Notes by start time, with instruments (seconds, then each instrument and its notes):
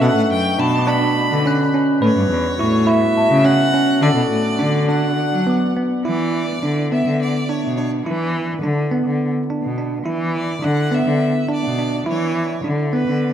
Already playing: woodwind section B2, glockenspiel C#6
0.01 cello B2, woodwind section A3 D4, tine electric piano A4, violin F#5
0.15 cello A2
0.30 cello F#2, violin G5
0.59 cello B2, tine electric piano D4, violin A5, glockenspiel B5
0.79 glockenspiel D6
0.87 tine electric piano D4, violin B5
1.30 cello D3
1.46 tine electric piano C#4, glockenspiel F#6
1.74 tine electric piano C#4
2.01 cello A2, woodwind section G3 B3 F#4, tine electric piano B4, violin C#5
2.16 cello G2
2.30 cello E2
2.59 cello A2, tine electric piano E4, glockenspiel C#6
2.87 tine electric piano E4, violin E5
3.17 glockenspiel A5
3.29 cello C#3
3.44 tine electric piano C#4, violin F#5
3.74 tine electric piano C#4
4.01 cello D3, woodwind section D3, tine electric piano A4, violin D5
4.16 cello B2
4.30 cello A2
4.59 cello D3, tine electric piano D4
4.89 tine electric piano D4, violin F#5
5.31 cello F#3
5.47 tine electric piano B3, glockenspiel D6
5.76 tine electric piano B3
6.05 cello E3, tine electric piano E4, violin D5
6.62 cello D3, tine electric piano D4
6.92 tine electric piano B3, violin E5
7.05 cello D3
7.22 violin D5
7.49 tine electric piano D4, violin C#5
7.63 cello B2
7.77 tine electric piano D4, violin C#5
8.06 cello E3, tine electric piano E4, violin B4
8.62 cello D3, tine electric piano D4
8.91 tine electric piano B3
9.06 cello D3
9.50 tine electric piano D4
9.63 cello B2
9.78 tine electric piano D4
10.05 cello E3, tine electric piano E4
10.35 violin D5
10.62 cello D3, tine electric piano D4, violin F#5
10.91 tine electric piano B3, violin E5
11.05 cello D3
11.48 tine electric piano D4
11.54 violin D5
11.63 cello B2
11.79 tine electric piano D4
12.06 cello E3, tine electric piano E4
12.10 violin C#5
12.64 cello D3, tine electric piano D4
12.93 tine electric piano B3, violin B4
13.07 cello D3